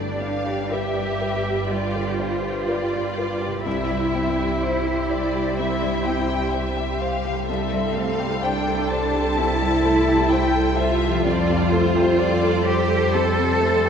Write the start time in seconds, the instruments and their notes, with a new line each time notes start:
Already playing: double bass section G1, felt piano G2 D3, harp G2 D4 G4 B5, viola section G3 G4, cello section D4, violin section B4 D5
0.21 felt piano D4, violin section F5
0.46 felt piano G4
0.72 cello section G4, felt piano B4, violin section E5
0.97 felt piano D5
1.21 felt piano B4
1.46 felt piano G4
1.70 felt piano G2, cello section F4, violin section D5
1.95 felt piano D3
2.19 felt piano D4, violin section C5
2.44 felt piano G4
2.68 felt piano B4, violin section D5
2.93 felt piano D5
3.18 felt piano B4
3.42 felt piano G4
3.47 harp C3
3.52 harp C4
3.56 harp G4
3.61 harp C5
3.65 felt piano C2, double bass section C2, viola section G3 G4, cello section E4, violin section C5 E5
3.91 felt piano G2
4.15 felt piano C4
4.39 felt piano G4
4.63 violin section C5, felt piano C5
4.87 felt piano G4
5.10 felt piano C5, violin section D5
5.36 felt piano G4
5.58 felt piano C2, cello section E4, violin section E5
5.82 felt piano G2
6.05 felt piano C4, violin section G5
6.30 felt piano G4
6.53 felt piano C5, violin section E5
6.77 felt piano G4
7.01 felt piano C5, violin section F5
7.25 harp C3, felt piano G4
7.33 harp A3
7.38 harp G4
7.43 harp C5
7.47 double bass section C2, felt piano C2, viola section G3 A4, cello section C4, violin section C5 E5
7.73 felt piano G2
7.95 felt piano A3, violin section F5
8.20 felt piano G4
8.43 cello section D4, felt piano C5, violin section G5
8.68 felt piano A4
8.91 felt piano C5, violin section A5
9.15 felt piano G4
9.36 felt piano C2, cello section E4
9.62 felt piano G2
9.85 felt piano A3
10.08 felt piano G4
10.31 felt piano C5, violin section G5
10.56 felt piano A4
10.77 cello section F4, felt piano C5, violin section E5
11.04 harp F3, felt piano G4
11.12 harp A3
11.16 harp G4
11.21 harp C4
11.25 double bass section F2, felt piano F2, viola section G3 A4, violin section C5 D5
11.49 felt piano C3
11.72 felt piano A3, violin section C5
11.96 felt piano G4
12.20 felt piano C5, violin section D5
12.43 felt piano A4
12.66 cello section G4, violin section C5, felt piano C5
12.91 felt piano G4
13.14 felt piano F2, cello section A4
13.38 felt piano C3
13.61 felt piano A3
13.85 felt piano G4